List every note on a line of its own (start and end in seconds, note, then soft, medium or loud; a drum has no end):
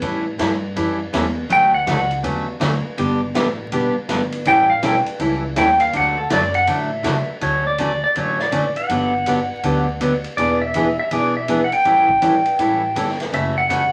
0.01 0.38 A2 medium
0.01 0.23 E3 medium
0.01 0.24 G3 medium
0.01 0.24 C#4 medium
0.01 0.24 E4 medium
0.01 0.24 A4 medium
0.01 kick soft
0.01 ride medium
0.38 0.75 G2 medium
0.38 0.50 E3 medium
0.38 0.50 G3 medium
0.38 0.51 C#4 medium
0.38 0.51 E4 medium
0.38 0.51 A4 medium
0.38 kick soft
0.38 snare medium
0.38 hi-hat pedal medium
0.38 ride medium
0.76 1.12 F#2 medium
0.76 0.98 E3 medium
0.76 0.98 G3 medium
0.76 0.98 C#4 medium
0.76 0.98 E4 medium
0.76 0.98 A4 medium
0.76 kick soft
0.76 ride medium
1.13 1.49 E2 medium
1.13 1.24 E3 medium
1.13 1.25 G3 medium
1.13 1.25 C#4 medium
1.13 1.25 E4 medium
1.13 1.25 A4 medium
1.13 kick soft
1.13 snare medium
1.13 hi-hat pedal medium
1.13 ride medium
1.49 1.86 D2 medium
1.49 1.71 D3 medium
1.49 1.71 F#3 medium
1.49 1.72 A3 medium
1.49 1.72 C#4 medium
1.49 1.72 F#4 medium
1.49 1.74 G5 medium
1.49 kick soft
1.49 ride medium
1.74 1.87 F#5 loud
1.87 2.23 C#2 loud
1.87 1.98 D3 medium
1.87 1.98 F#3 medium
1.87 1.98 A3 medium
1.87 1.99 C#4 medium
1.87 1.99 F#4 medium
1.87 2.11 F#5 loud
1.87 kick soft
1.87 snare medium
1.87 hi-hat pedal medium
1.87 ride medium
2.11 ride soft
2.23 2.60 E2 medium
2.23 2.45 D3 medium
2.23 2.45 F#3 medium
2.23 2.46 A3 medium
2.23 2.46 C#4 medium
2.23 2.46 F#4 medium
2.23 kick soft
2.23 ride medium
2.60 2.83 D2 loud
2.60 2.72 D3 medium
2.60 2.72 F#3 medium
2.60 2.72 A3 medium
2.60 2.72 C#4 medium
2.60 2.73 F#4 medium
2.60 kick soft
2.60 snare medium
2.60 hi-hat pedal medium
2.60 ride medium
2.85 muted upright bass stroke soft
2.98 3.34 G1 medium
2.98 3.19 D3 medium
2.98 3.20 G3 medium
2.98 3.20 B3 medium
2.98 3.20 D4 medium
2.98 3.20 G4 medium
2.98 kick soft
2.98 ride medium
3.35 3.71 A1 loud
3.35 3.46 D3 medium
3.35 3.46 G3 medium
3.35 3.47 B3 medium
3.35 3.47 D4 medium
3.35 3.47 G4 medium
3.35 kick soft
3.35 snare medium
3.35 hi-hat pedal medium
3.35 ride medium
3.72 3.94 B1 medium
3.72 3.94 D3 medium
3.72 3.94 G3 medium
3.72 3.94 B3 medium
3.72 3.94 D4 medium
3.72 3.94 G4 medium
3.72 kick soft
3.72 ride medium
3.96 muted upright bass stroke soft
4.09 4.45 G1 medium
4.09 4.20 D3 medium
4.09 4.20 G3 medium
4.09 4.21 B3 medium
4.09 4.21 D4 medium
4.09 4.21 G4 medium
4.09 kick soft
4.09 snare medium
4.09 hi-hat pedal medium
4.09 ride medium
4.32 ride medium
4.45 4.81 A1 medium
4.45 4.68 E3 medium
4.45 4.68 G3 medium
4.45 4.68 C#4 medium
4.45 4.68 E4 medium
4.45 4.68 A4 medium
4.45 4.70 G5 loud
4.45 kick soft
4.45 ride medium
4.70 4.83 F5 loud
4.82 5.05 B1 loud
4.82 4.94 E3 medium
4.82 4.94 G3 medium
4.82 4.94 C#4 medium
4.82 4.95 E4 medium
4.82 4.95 A4 medium
4.82 4.98 G5 loud
4.82 kick soft
4.82 snare medium
4.82 hi-hat pedal medium
4.82 ride medium
5.06 muted upright bass stroke soft
5.06 ride medium
5.19 5.55 C#2 medium
5.19 5.41 E3 medium
5.19 5.42 G3 medium
5.19 5.42 C#4 medium
5.19 5.42 E4 medium
5.19 5.42 A4 medium
5.19 kick soft
5.19 ride medium
5.56 5.92 D#2 medium
5.56 5.68 E3 medium
5.56 5.68 G3 medium
5.56 5.68 C#4 medium
5.56 5.68 E4 medium
5.56 5.68 A4 medium
5.56 5.80 G5 medium
5.56 kick soft
5.56 snare medium
5.56 hi-hat pedal medium
5.56 ride medium
5.80 5.93 F5 medium
5.80 ride medium
5.93 6.29 D2 medium
5.93 6.15 D3 medium
5.93 6.16 F#3 medium
5.93 6.16 A3 medium
5.93 6.16 D4 medium
5.93 6.16 F#4 medium
5.93 6.18 F#5 loud
5.93 kick soft
5.93 ride medium
6.18 6.31 A4 medium
6.30 6.66 F#2 loud
6.30 6.42 D3 medium
6.30 6.42 F#3 medium
6.30 6.42 A3 medium
6.30 6.42 D4 medium
6.30 6.42 F#4 medium
6.30 6.55 D5 medium
6.30 kick soft
6.30 snare medium
6.30 hi-hat pedal medium
6.30 ride medium
6.54 6.68 F#5 loud
6.54 ride soft
6.67 7.04 A2 medium
6.67 6.89 D3 medium
6.67 6.89 F#3 medium
6.67 6.89 A3 medium
6.67 6.89 D4 medium
6.67 6.89 F#4 medium
6.67 7.30 E5 medium
6.67 kick soft
6.67 ride medium
7.03 7.26 C#3 loud
7.03 7.15 D3 medium
7.03 7.16 F#3 medium
7.03 7.16 A3 medium
7.03 7.16 D4 medium
7.03 7.16 F#4 medium
7.03 kick soft
7.03 snare medium
7.03 hi-hat pedal medium
7.03 ride medium
7.28 muted upright bass stroke soft
7.41 8.01 D2 medium
7.41 7.63 D3 soft
7.41 7.63 F#3 medium
7.41 7.63 A3 medium
7.41 7.64 C#4 medium
7.41 7.64 F#4 medium
7.41 7.64 C#5 medium
7.41 kick soft
7.41 ride medium
7.67 7.79 D5 medium
7.78 7.90 D3 medium
7.78 7.90 F#3 medium
7.78 7.90 A3 medium
7.78 7.91 C#4 medium
7.78 7.91 F#4 medium
7.78 8.01 D5 medium
7.78 kick soft
7.78 hi-hat pedal medium
7.78 ride medium
8.04 8.15 D5 medium
8.15 8.75 A1 medium
8.15 8.38 D3 medium
8.15 8.38 F#3 medium
8.15 8.38 A3 soft
8.15 8.38 C#4 medium
8.15 8.38 F#4 medium
8.15 8.40 C#5 medium
8.15 kick soft
8.15 ride medium
8.39 8.78 D5 medium
8.39 snare soft
8.52 8.64 D3 medium
8.52 8.64 F#3 medium
8.52 8.64 A3 medium
8.52 8.64 C#4 medium
8.52 8.64 F#4 medium
8.52 kick soft
8.52 hi-hat pedal medium
8.52 ride medium
8.76 10.20 F#5 medium
8.76 ride soft
8.89 9.49 G1 medium
8.89 9.11 D3 medium
8.89 9.12 F#3 medium
8.89 9.12 B3 medium
8.89 9.12 D4 medium
8.89 9.12 G4 medium
8.89 kick soft
8.89 ride medium
9.26 9.38 D3 medium
9.26 9.38 F#3 medium
9.26 9.38 B3 medium
9.26 9.38 D4 medium
9.26 9.39 G4 medium
9.26 kick soft
9.26 hi-hat pedal medium
9.26 ride medium
9.63 10.23 D2 medium
9.63 9.85 D3 medium
9.63 9.85 F#3 medium
9.63 9.86 B3 medium
9.63 9.86 D4 medium
9.63 9.86 G4 medium
9.63 kick soft
9.63 ride medium
10.00 10.12 D3 medium
10.00 10.12 F#3 medium
10.00 10.12 B3 medium
10.00 10.13 D4 medium
10.00 10.13 G4 medium
10.00 kick soft
10.00 hi-hat pedal medium
10.00 ride medium
10.24 ride soft
10.37 10.97 E1 medium
10.37 10.60 E3 medium
10.37 10.60 B3 medium
10.37 10.60 D4 medium
10.37 10.60 G#4 medium
10.37 10.59 D5 medium
10.37 kick soft
10.37 ride medium
10.62 10.98 E5 loud
10.74 10.86 E3 medium
10.74 10.86 B3 medium
10.74 10.87 D4 medium
10.74 10.87 G#4 medium
10.74 kick soft
10.74 hi-hat pedal medium
10.74 ride medium
10.99 11.11 E5 loud
11.11 11.70 B1 medium
11.11 11.33 E3 medium
11.11 11.33 B3 medium
11.11 11.34 D4 medium
11.11 11.34 G#4 medium
11.11 11.36 D5 medium
11.11 kick soft
11.11 ride medium
11.37 11.65 E5 medium
11.48 11.60 E3 medium
11.48 11.60 B3 medium
11.48 11.60 D4 medium
11.48 11.60 G#4 medium
11.48 kick soft
11.48 hi-hat pedal medium
11.48 ride medium
11.64 11.73 F#5 medium
11.72 13.16 G5 medium
11.72 ride medium
11.85 12.45 A1 medium
11.85 12.07 E3 medium
11.85 12.07 G3 medium
11.85 12.07 C#4 medium
11.85 12.07 E4 medium
11.85 12.07 A4 medium
11.85 kick soft
11.85 ride medium
12.09 kick medium
12.22 12.33 E3 medium
12.22 12.34 G3 medium
12.22 12.34 C#4 medium
12.22 12.34 E4 medium
12.22 12.34 A4 medium
12.22 kick soft
12.22 hi-hat pedal medium
12.22 ride medium
12.46 ride medium
12.59 12.91 A1 medium
12.59 12.81 E3 medium
12.59 12.81 G3 medium
12.59 12.81 C#4 medium
12.59 12.81 E4 medium
12.59 12.81 A4 medium
12.59 kick soft
12.59 ride medium
12.95 13.28 G1 medium
12.95 13.07 E3 medium
12.95 13.08 G3 medium
12.95 13.08 C#4 medium
12.95 13.08 E4 medium
12.95 13.08 A4 medium
12.95 kick soft
12.95 hi-hat pedal medium
12.95 ride medium
13.08 snare soft
13.20 snare soft
13.20 ride medium
13.32 13.92 F#1 medium
13.32 13.54 C#3 medium
13.32 13.55 E3 medium
13.32 13.55 A3 medium
13.32 13.55 C#4 medium
13.32 13.55 F#4 medium
13.32 13.58 E5 medium
13.32 kick soft
13.32 ride medium
13.58 13.69 F#5 medium
13.69 13.81 C#3 medium
13.69 13.81 E3 medium
13.69 13.82 A3 medium
13.69 13.82 C#4 medium
13.69 13.82 F#4 medium
13.69 13.92 F#5 loud
13.69 kick soft
13.69 hi-hat pedal medium
13.69 ride medium